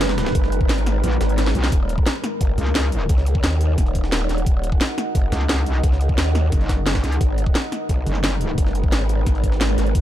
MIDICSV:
0, 0, Header, 1, 5, 480
1, 0, Start_track
1, 0, Key_signature, -6, "minor"
1, 0, Tempo, 342857
1, 491, Time_signature, 4, 2, 24, 8
1, 14014, End_track
2, 0, Start_track
2, 0, Title_t, "Ambient pad"
2, 0, Program_c, 0, 92
2, 0, Note_on_c, 0, 56, 84
2, 0, Note_on_c, 0, 63, 87
2, 0, Note_on_c, 0, 70, 80
2, 0, Note_on_c, 0, 71, 93
2, 2355, Note_off_c, 0, 56, 0
2, 2355, Note_off_c, 0, 71, 0
2, 2356, Note_off_c, 0, 63, 0
2, 2409, Note_on_c, 0, 75, 81
2, 2410, Note_on_c, 0, 63, 86
2, 2410, Note_on_c, 0, 78, 96
2, 10034, Note_off_c, 0, 75, 0
2, 10035, Note_off_c, 0, 70, 0
2, 10035, Note_off_c, 0, 78, 0
2, 10092, Note_on_c, 0, 70, 79
2, 10093, Note_on_c, 0, 56, 84
2, 10093, Note_on_c, 0, 71, 96
2, 14014, Note_off_c, 0, 56, 0
2, 14014, Note_off_c, 0, 63, 0
2, 14014, Note_off_c, 0, 70, 0
2, 14014, Note_off_c, 0, 71, 0
2, 14014, End_track
3, 0, Start_track
3, 0, Title_t, "Wobble bass"
3, 0, Program_c, 1, 39
3, 0, Note_on_c, 1, 30, 98
3, 472, Note_off_c, 1, 30, 0
3, 1452, Note_on_c, 1, 34, 101
3, 1672, Note_off_c, 1, 34, 0
3, 2170, Note_on_c, 1, 35, 100
3, 2391, Note_off_c, 1, 35, 0
3, 3611, Note_on_c, 1, 37, 96
3, 4312, Note_off_c, 1, 37, 0
3, 7450, Note_on_c, 1, 37, 97
3, 8151, Note_off_c, 1, 37, 0
3, 9131, Note_on_c, 1, 30, 100
3, 9832, Note_off_c, 1, 30, 0
3, 9851, Note_on_c, 1, 37, 99
3, 10072, Note_off_c, 1, 37, 0
3, 11290, Note_on_c, 1, 30, 101
3, 11992, Note_off_c, 1, 30, 0
3, 14014, End_track
4, 0, Start_track
4, 0, Title_t, "Wobble bass"
4, 0, Program_c, 2, 39
4, 490, Note_on_c, 2, 30, 94
4, 951, Note_off_c, 2, 30, 0
4, 970, Note_on_c, 2, 32, 101
4, 1431, Note_off_c, 2, 32, 0
4, 1691, Note_on_c, 2, 32, 99
4, 2152, Note_off_c, 2, 32, 0
4, 2410, Note_on_c, 2, 27, 95
4, 2872, Note_off_c, 2, 27, 0
4, 3371, Note_on_c, 2, 30, 96
4, 3592, Note_off_c, 2, 30, 0
4, 4331, Note_on_c, 2, 37, 97
4, 4792, Note_off_c, 2, 37, 0
4, 4811, Note_on_c, 2, 39, 99
4, 5272, Note_off_c, 2, 39, 0
4, 5290, Note_on_c, 2, 27, 101
4, 5992, Note_off_c, 2, 27, 0
4, 6011, Note_on_c, 2, 27, 98
4, 6232, Note_off_c, 2, 27, 0
4, 6250, Note_on_c, 2, 27, 97
4, 6711, Note_off_c, 2, 27, 0
4, 7210, Note_on_c, 2, 30, 102
4, 7431, Note_off_c, 2, 30, 0
4, 8170, Note_on_c, 2, 37, 97
4, 8631, Note_off_c, 2, 37, 0
4, 8650, Note_on_c, 2, 39, 96
4, 9111, Note_off_c, 2, 39, 0
4, 10091, Note_on_c, 2, 32, 91
4, 10552, Note_off_c, 2, 32, 0
4, 11051, Note_on_c, 2, 35, 102
4, 11272, Note_off_c, 2, 35, 0
4, 12011, Note_on_c, 2, 30, 96
4, 12472, Note_off_c, 2, 30, 0
4, 12491, Note_on_c, 2, 32, 98
4, 12952, Note_off_c, 2, 32, 0
4, 12970, Note_on_c, 2, 32, 100
4, 13672, Note_off_c, 2, 32, 0
4, 13690, Note_on_c, 2, 32, 94
4, 13912, Note_off_c, 2, 32, 0
4, 13930, Note_on_c, 2, 32, 98
4, 14014, Note_off_c, 2, 32, 0
4, 14014, End_track
5, 0, Start_track
5, 0, Title_t, "Drums"
5, 10, Note_on_c, 9, 38, 123
5, 10, Note_on_c, 9, 42, 98
5, 11, Note_off_c, 9, 38, 0
5, 11, Note_off_c, 9, 42, 0
5, 11, Note_on_c, 9, 38, 107
5, 11, Note_on_c, 9, 42, 78
5, 130, Note_off_c, 9, 38, 0
5, 130, Note_off_c, 9, 42, 0
5, 130, Note_on_c, 9, 38, 106
5, 130, Note_on_c, 9, 42, 84
5, 250, Note_off_c, 9, 38, 0
5, 250, Note_off_c, 9, 42, 0
5, 250, Note_on_c, 9, 38, 109
5, 250, Note_on_c, 9, 42, 80
5, 370, Note_off_c, 9, 38, 0
5, 370, Note_off_c, 9, 42, 0
5, 370, Note_on_c, 9, 38, 104
5, 370, Note_on_c, 9, 42, 81
5, 490, Note_off_c, 9, 42, 0
5, 490, Note_on_c, 9, 36, 115
5, 490, Note_on_c, 9, 42, 102
5, 510, Note_off_c, 9, 38, 0
5, 611, Note_on_c, 9, 38, 44
5, 630, Note_off_c, 9, 36, 0
5, 630, Note_off_c, 9, 42, 0
5, 730, Note_on_c, 9, 42, 71
5, 731, Note_off_c, 9, 42, 0
5, 731, Note_on_c, 9, 42, 70
5, 751, Note_off_c, 9, 38, 0
5, 850, Note_on_c, 9, 36, 105
5, 871, Note_off_c, 9, 42, 0
5, 970, Note_on_c, 9, 38, 109
5, 970, Note_on_c, 9, 42, 95
5, 990, Note_off_c, 9, 36, 0
5, 1091, Note_off_c, 9, 42, 0
5, 1091, Note_on_c, 9, 42, 40
5, 1110, Note_off_c, 9, 38, 0
5, 1210, Note_off_c, 9, 42, 0
5, 1210, Note_on_c, 9, 40, 57
5, 1210, Note_on_c, 9, 42, 71
5, 1211, Note_off_c, 9, 42, 0
5, 1211, Note_on_c, 9, 38, 44
5, 1211, Note_on_c, 9, 42, 70
5, 1350, Note_off_c, 9, 40, 0
5, 1351, Note_off_c, 9, 38, 0
5, 1351, Note_off_c, 9, 42, 0
5, 1450, Note_on_c, 9, 42, 89
5, 1451, Note_off_c, 9, 42, 0
5, 1451, Note_on_c, 9, 40, 34
5, 1451, Note_on_c, 9, 42, 99
5, 1571, Note_off_c, 9, 42, 0
5, 1571, Note_on_c, 9, 42, 45
5, 1591, Note_off_c, 9, 40, 0
5, 1690, Note_off_c, 9, 42, 0
5, 1690, Note_on_c, 9, 38, 110
5, 1690, Note_on_c, 9, 42, 84
5, 1810, Note_off_c, 9, 42, 0
5, 1810, Note_on_c, 9, 42, 40
5, 1830, Note_off_c, 9, 38, 0
5, 1930, Note_off_c, 9, 42, 0
5, 1930, Note_on_c, 9, 38, 65
5, 1930, Note_on_c, 9, 42, 102
5, 1931, Note_off_c, 9, 42, 0
5, 1931, Note_on_c, 9, 42, 62
5, 2050, Note_off_c, 9, 38, 0
5, 2050, Note_off_c, 9, 42, 0
5, 2050, Note_on_c, 9, 38, 105
5, 2050, Note_on_c, 9, 42, 82
5, 2171, Note_off_c, 9, 42, 0
5, 2171, Note_on_c, 9, 42, 71
5, 2190, Note_off_c, 9, 38, 0
5, 2291, Note_off_c, 9, 42, 0
5, 2291, Note_on_c, 9, 38, 87
5, 2291, Note_on_c, 9, 42, 39
5, 2410, Note_on_c, 9, 36, 122
5, 2411, Note_off_c, 9, 42, 0
5, 2411, Note_on_c, 9, 42, 99
5, 2431, Note_off_c, 9, 38, 0
5, 2550, Note_off_c, 9, 36, 0
5, 2551, Note_off_c, 9, 42, 0
5, 2650, Note_on_c, 9, 42, 67
5, 2651, Note_off_c, 9, 42, 0
5, 2651, Note_on_c, 9, 42, 70
5, 2770, Note_on_c, 9, 36, 110
5, 2791, Note_off_c, 9, 42, 0
5, 2890, Note_on_c, 9, 38, 120
5, 2890, Note_on_c, 9, 42, 96
5, 2891, Note_off_c, 9, 38, 0
5, 2891, Note_off_c, 9, 42, 0
5, 2891, Note_on_c, 9, 38, 121
5, 2891, Note_on_c, 9, 42, 91
5, 2910, Note_off_c, 9, 36, 0
5, 3031, Note_off_c, 9, 38, 0
5, 3031, Note_off_c, 9, 42, 0
5, 3131, Note_on_c, 9, 40, 58
5, 3131, Note_on_c, 9, 42, 69
5, 3271, Note_off_c, 9, 40, 0
5, 3271, Note_off_c, 9, 42, 0
5, 3371, Note_on_c, 9, 36, 108
5, 3371, Note_on_c, 9, 42, 96
5, 3511, Note_off_c, 9, 36, 0
5, 3511, Note_off_c, 9, 42, 0
5, 3611, Note_on_c, 9, 42, 70
5, 3731, Note_on_c, 9, 40, 37
5, 3751, Note_off_c, 9, 42, 0
5, 3850, Note_on_c, 9, 38, 118
5, 3850, Note_on_c, 9, 42, 87
5, 3851, Note_off_c, 9, 38, 0
5, 3851, Note_off_c, 9, 42, 0
5, 3851, Note_on_c, 9, 38, 125
5, 3851, Note_on_c, 9, 42, 102
5, 3871, Note_off_c, 9, 40, 0
5, 3991, Note_off_c, 9, 38, 0
5, 3991, Note_off_c, 9, 42, 0
5, 4091, Note_on_c, 9, 42, 69
5, 4231, Note_off_c, 9, 42, 0
5, 4331, Note_on_c, 9, 36, 127
5, 4331, Note_on_c, 9, 42, 100
5, 4450, Note_on_c, 9, 38, 43
5, 4471, Note_off_c, 9, 36, 0
5, 4471, Note_off_c, 9, 42, 0
5, 4570, Note_on_c, 9, 42, 72
5, 4571, Note_off_c, 9, 42, 0
5, 4571, Note_on_c, 9, 42, 68
5, 4590, Note_off_c, 9, 38, 0
5, 4691, Note_on_c, 9, 36, 111
5, 4711, Note_off_c, 9, 42, 0
5, 4809, Note_on_c, 9, 38, 116
5, 4809, Note_on_c, 9, 42, 88
5, 4811, Note_off_c, 9, 38, 0
5, 4811, Note_off_c, 9, 42, 0
5, 4811, Note_on_c, 9, 38, 122
5, 4811, Note_on_c, 9, 42, 92
5, 4831, Note_off_c, 9, 36, 0
5, 4951, Note_off_c, 9, 38, 0
5, 4951, Note_off_c, 9, 42, 0
5, 5050, Note_on_c, 9, 42, 70
5, 5051, Note_off_c, 9, 42, 0
5, 5051, Note_on_c, 9, 42, 68
5, 5191, Note_off_c, 9, 42, 0
5, 5290, Note_on_c, 9, 36, 112
5, 5290, Note_on_c, 9, 40, 34
5, 5290, Note_on_c, 9, 42, 97
5, 5410, Note_off_c, 9, 42, 0
5, 5410, Note_on_c, 9, 42, 44
5, 5430, Note_off_c, 9, 36, 0
5, 5430, Note_off_c, 9, 40, 0
5, 5530, Note_off_c, 9, 42, 0
5, 5530, Note_on_c, 9, 36, 65
5, 5530, Note_on_c, 9, 42, 68
5, 5651, Note_on_c, 9, 38, 52
5, 5670, Note_off_c, 9, 36, 0
5, 5670, Note_off_c, 9, 42, 0
5, 5770, Note_off_c, 9, 38, 0
5, 5770, Note_on_c, 9, 38, 127
5, 5770, Note_on_c, 9, 42, 100
5, 5891, Note_off_c, 9, 38, 0
5, 5891, Note_on_c, 9, 38, 41
5, 5891, Note_on_c, 9, 40, 36
5, 5910, Note_off_c, 9, 42, 0
5, 6010, Note_off_c, 9, 38, 0
5, 6010, Note_on_c, 9, 38, 38
5, 6010, Note_on_c, 9, 42, 68
5, 6031, Note_off_c, 9, 40, 0
5, 6131, Note_off_c, 9, 42, 0
5, 6131, Note_on_c, 9, 42, 38
5, 6150, Note_off_c, 9, 38, 0
5, 6250, Note_off_c, 9, 42, 0
5, 6250, Note_on_c, 9, 36, 127
5, 6250, Note_on_c, 9, 42, 93
5, 6390, Note_off_c, 9, 36, 0
5, 6390, Note_off_c, 9, 42, 0
5, 6490, Note_on_c, 9, 42, 72
5, 6610, Note_on_c, 9, 36, 112
5, 6630, Note_off_c, 9, 42, 0
5, 6730, Note_on_c, 9, 38, 121
5, 6730, Note_on_c, 9, 42, 91
5, 6731, Note_off_c, 9, 38, 0
5, 6731, Note_off_c, 9, 42, 0
5, 6731, Note_on_c, 9, 38, 125
5, 6731, Note_on_c, 9, 42, 89
5, 6750, Note_off_c, 9, 36, 0
5, 6871, Note_off_c, 9, 38, 0
5, 6871, Note_off_c, 9, 42, 0
5, 6969, Note_on_c, 9, 42, 70
5, 6970, Note_off_c, 9, 42, 0
5, 6970, Note_on_c, 9, 40, 58
5, 6970, Note_on_c, 9, 42, 66
5, 7110, Note_off_c, 9, 40, 0
5, 7110, Note_off_c, 9, 42, 0
5, 7209, Note_on_c, 9, 42, 89
5, 7210, Note_off_c, 9, 42, 0
5, 7210, Note_on_c, 9, 36, 113
5, 7210, Note_on_c, 9, 42, 88
5, 7350, Note_off_c, 9, 36, 0
5, 7350, Note_off_c, 9, 42, 0
5, 7449, Note_on_c, 9, 38, 108
5, 7449, Note_on_c, 9, 42, 83
5, 7450, Note_off_c, 9, 42, 0
5, 7450, Note_on_c, 9, 42, 67
5, 7570, Note_on_c, 9, 40, 36
5, 7589, Note_off_c, 9, 38, 0
5, 7590, Note_off_c, 9, 42, 0
5, 7690, Note_on_c, 9, 38, 127
5, 7690, Note_on_c, 9, 42, 94
5, 7710, Note_off_c, 9, 40, 0
5, 7830, Note_off_c, 9, 38, 0
5, 7830, Note_off_c, 9, 42, 0
5, 7930, Note_on_c, 9, 42, 65
5, 7931, Note_off_c, 9, 42, 0
5, 7931, Note_on_c, 9, 42, 71
5, 8071, Note_off_c, 9, 42, 0
5, 8170, Note_on_c, 9, 36, 126
5, 8170, Note_on_c, 9, 42, 88
5, 8171, Note_off_c, 9, 42, 0
5, 8171, Note_on_c, 9, 42, 92
5, 8291, Note_on_c, 9, 38, 42
5, 8310, Note_off_c, 9, 36, 0
5, 8311, Note_off_c, 9, 42, 0
5, 8409, Note_on_c, 9, 42, 61
5, 8411, Note_off_c, 9, 42, 0
5, 8411, Note_on_c, 9, 42, 72
5, 8431, Note_off_c, 9, 38, 0
5, 8530, Note_on_c, 9, 36, 112
5, 8551, Note_off_c, 9, 42, 0
5, 8650, Note_on_c, 9, 38, 124
5, 8650, Note_on_c, 9, 42, 87
5, 8651, Note_off_c, 9, 38, 0
5, 8651, Note_off_c, 9, 42, 0
5, 8651, Note_on_c, 9, 38, 118
5, 8651, Note_on_c, 9, 42, 91
5, 8670, Note_off_c, 9, 36, 0
5, 8791, Note_off_c, 9, 38, 0
5, 8791, Note_off_c, 9, 42, 0
5, 8890, Note_on_c, 9, 40, 57
5, 8890, Note_on_c, 9, 42, 64
5, 8891, Note_off_c, 9, 42, 0
5, 8891, Note_on_c, 9, 38, 43
5, 8891, Note_on_c, 9, 42, 69
5, 9030, Note_off_c, 9, 40, 0
5, 9031, Note_off_c, 9, 38, 0
5, 9031, Note_off_c, 9, 42, 0
5, 9130, Note_on_c, 9, 36, 113
5, 9130, Note_on_c, 9, 40, 32
5, 9130, Note_on_c, 9, 42, 87
5, 9132, Note_off_c, 9, 42, 0
5, 9132, Note_on_c, 9, 42, 90
5, 9252, Note_off_c, 9, 42, 0
5, 9252, Note_on_c, 9, 42, 46
5, 9270, Note_off_c, 9, 36, 0
5, 9270, Note_off_c, 9, 40, 0
5, 9370, Note_on_c, 9, 36, 63
5, 9371, Note_off_c, 9, 42, 0
5, 9371, Note_on_c, 9, 38, 111
5, 9371, Note_on_c, 9, 42, 65
5, 9510, Note_off_c, 9, 36, 0
5, 9511, Note_off_c, 9, 38, 0
5, 9511, Note_off_c, 9, 42, 0
5, 9610, Note_on_c, 9, 38, 127
5, 9610, Note_on_c, 9, 42, 92
5, 9612, Note_off_c, 9, 42, 0
5, 9612, Note_on_c, 9, 42, 62
5, 9730, Note_on_c, 9, 36, 62
5, 9731, Note_on_c, 9, 40, 35
5, 9732, Note_off_c, 9, 38, 0
5, 9732, Note_off_c, 9, 42, 0
5, 9732, Note_on_c, 9, 38, 105
5, 9732, Note_on_c, 9, 42, 80
5, 9851, Note_off_c, 9, 38, 0
5, 9851, Note_off_c, 9, 42, 0
5, 9851, Note_on_c, 9, 38, 38
5, 9851, Note_on_c, 9, 42, 62
5, 9870, Note_off_c, 9, 36, 0
5, 9871, Note_off_c, 9, 40, 0
5, 9971, Note_off_c, 9, 42, 0
5, 9971, Note_on_c, 9, 42, 62
5, 9991, Note_off_c, 9, 38, 0
5, 10090, Note_off_c, 9, 42, 0
5, 10090, Note_on_c, 9, 42, 93
5, 10091, Note_off_c, 9, 42, 0
5, 10091, Note_on_c, 9, 36, 120
5, 10091, Note_on_c, 9, 42, 93
5, 10231, Note_off_c, 9, 36, 0
5, 10231, Note_off_c, 9, 42, 0
5, 10331, Note_on_c, 9, 42, 63
5, 10451, Note_on_c, 9, 36, 107
5, 10471, Note_off_c, 9, 42, 0
5, 10570, Note_on_c, 9, 38, 121
5, 10570, Note_on_c, 9, 42, 89
5, 10591, Note_off_c, 9, 36, 0
5, 10710, Note_off_c, 9, 38, 0
5, 10710, Note_off_c, 9, 42, 0
5, 10810, Note_on_c, 9, 40, 55
5, 10810, Note_on_c, 9, 42, 63
5, 10811, Note_off_c, 9, 42, 0
5, 10811, Note_on_c, 9, 42, 71
5, 10950, Note_off_c, 9, 40, 0
5, 10951, Note_off_c, 9, 42, 0
5, 11050, Note_on_c, 9, 36, 107
5, 11050, Note_on_c, 9, 42, 89
5, 11051, Note_off_c, 9, 42, 0
5, 11051, Note_on_c, 9, 42, 90
5, 11190, Note_off_c, 9, 36, 0
5, 11191, Note_off_c, 9, 42, 0
5, 11291, Note_on_c, 9, 42, 70
5, 11411, Note_on_c, 9, 40, 33
5, 11431, Note_off_c, 9, 42, 0
5, 11530, Note_on_c, 9, 38, 115
5, 11530, Note_on_c, 9, 42, 91
5, 11531, Note_off_c, 9, 38, 0
5, 11531, Note_off_c, 9, 42, 0
5, 11531, Note_on_c, 9, 38, 127
5, 11531, Note_on_c, 9, 42, 92
5, 11551, Note_off_c, 9, 40, 0
5, 11671, Note_off_c, 9, 38, 0
5, 11671, Note_off_c, 9, 42, 0
5, 11771, Note_on_c, 9, 42, 72
5, 11911, Note_off_c, 9, 42, 0
5, 12010, Note_on_c, 9, 36, 118
5, 12011, Note_on_c, 9, 42, 90
5, 12131, Note_on_c, 9, 38, 44
5, 12150, Note_off_c, 9, 36, 0
5, 12151, Note_off_c, 9, 42, 0
5, 12250, Note_on_c, 9, 42, 64
5, 12251, Note_off_c, 9, 42, 0
5, 12251, Note_on_c, 9, 42, 71
5, 12271, Note_off_c, 9, 38, 0
5, 12370, Note_on_c, 9, 36, 106
5, 12391, Note_off_c, 9, 42, 0
5, 12490, Note_on_c, 9, 38, 110
5, 12490, Note_on_c, 9, 42, 90
5, 12491, Note_off_c, 9, 38, 0
5, 12491, Note_off_c, 9, 42, 0
5, 12491, Note_on_c, 9, 38, 121
5, 12491, Note_on_c, 9, 42, 94
5, 12510, Note_off_c, 9, 36, 0
5, 12631, Note_off_c, 9, 38, 0
5, 12631, Note_off_c, 9, 42, 0
5, 12730, Note_on_c, 9, 42, 70
5, 12731, Note_off_c, 9, 42, 0
5, 12731, Note_on_c, 9, 42, 68
5, 12871, Note_off_c, 9, 42, 0
5, 12970, Note_on_c, 9, 36, 105
5, 12971, Note_on_c, 9, 40, 31
5, 12971, Note_on_c, 9, 42, 92
5, 13090, Note_off_c, 9, 42, 0
5, 13090, Note_on_c, 9, 42, 45
5, 13110, Note_off_c, 9, 36, 0
5, 13111, Note_off_c, 9, 40, 0
5, 13210, Note_off_c, 9, 42, 0
5, 13210, Note_on_c, 9, 36, 60
5, 13210, Note_on_c, 9, 42, 67
5, 13330, Note_on_c, 9, 38, 52
5, 13350, Note_off_c, 9, 36, 0
5, 13350, Note_off_c, 9, 42, 0
5, 13450, Note_off_c, 9, 38, 0
5, 13450, Note_on_c, 9, 38, 122
5, 13450, Note_on_c, 9, 42, 98
5, 13570, Note_off_c, 9, 38, 0
5, 13570, Note_on_c, 9, 38, 42
5, 13571, Note_on_c, 9, 40, 33
5, 13590, Note_off_c, 9, 42, 0
5, 13690, Note_on_c, 9, 42, 71
5, 13691, Note_off_c, 9, 38, 0
5, 13691, Note_off_c, 9, 42, 0
5, 13691, Note_on_c, 9, 38, 35
5, 13691, Note_on_c, 9, 42, 65
5, 13711, Note_off_c, 9, 40, 0
5, 13811, Note_off_c, 9, 42, 0
5, 13811, Note_on_c, 9, 42, 37
5, 13831, Note_off_c, 9, 38, 0
5, 13930, Note_off_c, 9, 42, 0
5, 13930, Note_on_c, 9, 36, 116
5, 13930, Note_on_c, 9, 42, 89
5, 13931, Note_off_c, 9, 42, 0
5, 13931, Note_on_c, 9, 42, 98
5, 14014, Note_off_c, 9, 36, 0
5, 14014, Note_off_c, 9, 42, 0
5, 14014, End_track
0, 0, End_of_file